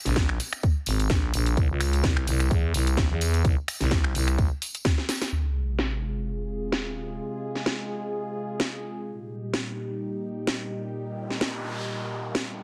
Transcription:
0.05 A#1, snare, closed hi-hat, tambourine
0.16 kick, snare, closed hi-hat, tambourine
0.29 finger snap
0.40 open hi-hat, tambourine
0.53 finger snap, closed hi-hat, tambourine
0.63 kick, closed hi-hat, tambourine
0.86 G#1, open hi-hat, tambourine
1.00 closed hi-hat, tambourine
1.10 A#1, kick, snare, closed hi-hat, tambourine
1.34 A#1, open hi-hat, tambourine
1.46 closed hi-hat, tambourine
1.57 C2, kick, closed hi-hat, tambourine
1.70 C#2
1.80 finger snap, open hi-hat, tambourine
1.93 closed hi-hat, tambourine
2.04 C2, kick, snare, closed hi-hat, tambourine
2.17 finger snap
2.27 C2, open hi-hat, tambourine
2.40 finger snap, closed hi-hat, tambourine
2.51 E2, kick, closed hi-hat, tambourine
2.74 C2, open hi-hat, tambourine
2.87 closed hi-hat, tambourine
2.97 kick, snare, closed hi-hat, tambourine
3.10 E2
3.21 open hi-hat, tambourine
3.34 closed hi-hat, tambourine
3.45 C2, kick, closed hi-hat, tambourine
3.68 finger snap, open hi-hat, tambourine
3.80 C2, snare, closed hi-hat, tambourine
3.91 kick, snare, closed hi-hat, tambourine
4.04 finger snap
4.15 C2, open hi-hat, tambourine
4.28 finger snap, closed hi-hat, tambourine
4.38 kick, closed hi-hat, tambourine
4.62 open hi-hat, tambourine
4.74 closed hi-hat, tambourine
4.85 kick, snare, closed hi-hat
4.98 snare
5.09 snare, open hi-hat, tambourine
5.22 snare, closed hi-hat, tambourine
5.32 C3 G#3 F4 G#4, sub drop
5.79 snare
6.72 snare
7.55 snare
7.66 snare
8.60 snare
9.07 A#2 G3 D#4 G4
9.54 snare
10.47 snare
10.95 noise sweep
11.30 snare
11.41 snare
12.35 snare

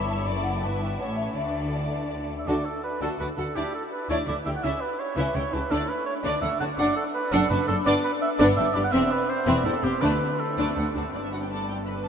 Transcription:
Already playing: G1 G2 E4 A4 C#5 E5
0.09 A5
0.27 F#1 F#2 A4 D5
0.36 E5
0.44 F#5
0.55 G5
0.63 G1 G2 B4 E5 A5
0.82 G5
0.99 A1 A2 C#4 A4 C#5 E5 F#5
1.17 E5
1.36 D2 D3 D4 A4 D5 E5
1.75 D5
2.39 E5
2.47 D2 D3 D4 F#4 A4 D5
2.65 A4
2.84 B4
3.01 D2 D3 D4 F#4 A4
3.19 D2 D3 F#4 B4 D5
3.37 D2 D3 F#4 A4 F#5
3.55 D2 D3 D4 E4 G4 D5
3.75 A4
3.92 B4
4.09 D2 D3 D4 E4 C#5 D5
4.27 D2 D3 E4 D5 E5
4.45 D2 D3 E4 G4 E5 G5
4.56 F#5
4.63 C#2 C#3 C#4 E4 E5
4.81 B4
5.00 C#5
5.16 C#2 C#3 C#4 E4 B4 E5
5.35 C#2 C#3 E4 C#5 G5
5.52 C#2 C#3 E4 G4 B4 A5
5.70 D2 D3 A3 D4 A4 D5
5.89 B4
6.06 C#5
6.24 D2 D3 A3 D4 D5
6.42 D2 D3 D4 E5 F#5
6.60 D2 D3 D4 F#4 F#5 A5
6.77 F#1 F#2 D4 D5 F#5
6.96 A4
7.14 B4
7.31 F#1 F#2 D4 A4 F#5
7.50 F#1 F#2 D4 F#4 B4 A5
7.67 F#1 F#2 D4 A4 C6
7.85 G1 G2 B3 D4 D5
8.04 B4
8.22 E5
8.39 G1 G2 B3 D4 D5
8.57 G1 G2 D4 E5 G5
8.74 G1 G2 D4 G4 D5 B5
8.84 F#5
8.92 E1 E2 C4 E5
9.11 B4
9.29 C5
9.46 E1 E2 C4 B4 E5
9.64 E1 E2 C4 E4 A4 G5
9.83 E1 E2 C4 G4 C6
10.01 D2 D3 A3 D4 B4 D5
10.40 A4
10.58 D2 A3 D4 D5
10.76 D2 D4 F#5
10.94 D2 D4 F#4 A5
11.12 G1 G2 D4 D5
11.23 E4 E5
11.32 F#4 F#5
11.41 G4 G5
11.50 A4 D5 A5
11.68 G4 G5
11.86 B4 B5
12.04 A4 A5

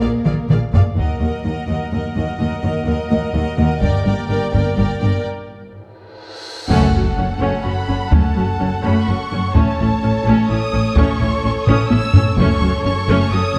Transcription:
Already playing: A#3 A#4
0.01 A#1 A#2 A#3 G#4 D5 F5
0.25 A#1 A#2 A#3 G#4 D5 F5, taiko mid
0.49 A#1 A#2 A#3 G#4 D5 F5, taiko mid
0.73 A#1 A#2 A#3 G#4 D5 F5, taiko low
0.96 D#2 F#3 A#4 D#5 F#5, taiko
1.00 A#3
1.20 D#2 A#4 D#5 F#5
1.44 D#2 A#4 D#5 F#5
1.67 D#2 D#5 F#5
1.72 A#4
1.92 D#2 A#4 D#5 F#5
2.14 D#2 A#4 D#5 F#5
2.39 D#2 A#4 D#5 F#5
2.62 D#2 A#4 D#5 F#5
2.86 D#2 A#4 D#5 F#5
3.09 D#2 A#4 D#5 F#5
3.34 D#2 A#4 D#5 F#5
3.57 D#2 A#4 D#5 F#5
3.81 G1 G2 G3 A#3 A#4 D5 G5, taiko
4.04 G1 G2 A#4 D5 G5
4.29 G1 G2 A#4 D5 G5
4.52 G1 G2 A#4 D5 G5, taiko
4.75 G1 G2 A#4 D5 G5
4.99 G1 G2 A#4 D5 G5
5.25 cymbal swell
6.69 F#1 F#2 A3 C#4 A4 F#5, taiko, impact
6.94 F#1 F#2 C#4 F#4
7.17 F#1 F#2 C#4
7.39 F#1 F#2 A3 C#4
7.63 F#1 F#2 C#4 F#4 B5
7.88 F#1 F#2 C#4
8.11 F#1 F#2 A3 C#4 A5, taiko
8.35 F#1 F#2 C#4 F#4
8.60 F#1 F#2 C#4
8.84 F#1 F#2 A3 C#4 B5
9.06 F#1 F#2 C#4 F#4 C#6
9.31 F#1 F#2 C#4
9.54 A1 A2 A3 C#4 A4 C#5 A5, taiko
9.79 A1 A2 C#4 E4
10.02 A1 A2 C#4
10.24 A1 A2 A3 C#4
10.49 A1 A2 C#4 E4 D#6
10.72 A1 A2 C#4
10.94 A1 A2 A3 C#4 C#6, taiko
11.20 A1 A2 C#4 E4
11.44 A1 A2 C#4
11.66 A1 A2 A3 C#4 D#6, taiko low-mid
11.90 A1 A2 C#4 E4 E6, taiko high
12.13 A1 A2 C#4, taiko low
12.37 F#1 F#2 A3 C#4 A4 C#5 C#6, taiko
12.61 F#1 F#2 C#4 F#4
12.84 F#1 F#2 C#4 C#6
13.07 F#1 F#2 A3 C#4
13.31 F#1 F#2 C#4 F#4 D#6
13.55 F#1

